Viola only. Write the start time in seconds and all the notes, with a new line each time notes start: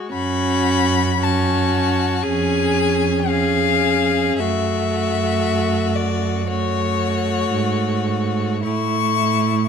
Already playing: G#3
0.13 C#4
1.20 C#4
2.23 C#4
3.29 C#4
4.40 A3
6.49 A3
8.65 A3